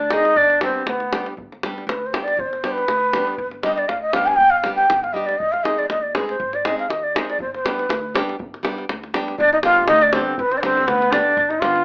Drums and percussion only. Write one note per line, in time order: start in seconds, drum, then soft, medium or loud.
0.11 davul high medium
0.25 davul high soft
0.36 davul low medium
0.50 davul high soft
0.61 davul high medium
0.75 davul high soft
0.87 davul high medium
1.00 davul high soft
1.13 davul high medium
1.26 davul high soft
1.38 davul low medium
1.52 davul high soft
1.63 davul high medium
1.78 davul high soft
1.89 davul high medium
2.14 davul high medium
2.28 davul high soft
2.39 davul low loud
2.53 davul high soft
2.64 davul high medium
2.78 davul high soft
2.88 davul high medium
3.13 davul high medium
3.27 davul high soft
3.38 davul low medium
3.51 davul high soft
3.63 davul high medium
3.78 davul high soft
3.89 davul high medium
4.13 davul high medium
4.28 davul high soft
4.38 davul low medium
4.64 davul high medium
4.78 davul high soft
4.90 davul high medium
5.04 davul high soft
5.29 davul high soft
5.40 davul low medium
5.54 davul high soft
5.65 davul high medium
5.79 davul high soft
5.90 davul high medium
6.15 davul high medium
6.29 davul high soft
6.40 davul low medium
6.53 davul high soft
6.65 davul high medium
6.79 davul high soft
6.90 davul high medium
7.16 davul high medium
7.30 davul high soft
7.40 davul low medium
7.54 davul high soft
7.66 davul high medium
7.79 davul high soft
7.90 davul high medium
8.15 davul high medium
8.29 davul high soft
8.40 davul low loud
8.54 davul high soft
8.65 davul high medium
8.78 davul high soft
8.89 davul high medium
9.04 davul high soft
9.14 davul high medium
9.28 davul high soft
9.38 davul low medium
9.53 davul high soft
9.63 davul high medium
9.77 davul high soft
9.88 davul high medium
10.01 davul high soft
10.13 davul high medium
10.38 davul low loud
10.52 davul high soft
10.63 davul high medium
10.77 davul high soft
10.88 davul high medium
11.02 davul high soft
11.13 davul high medium
11.37 davul low medium
11.51 davul high soft
11.62 davul high medium
11.76 davul high soft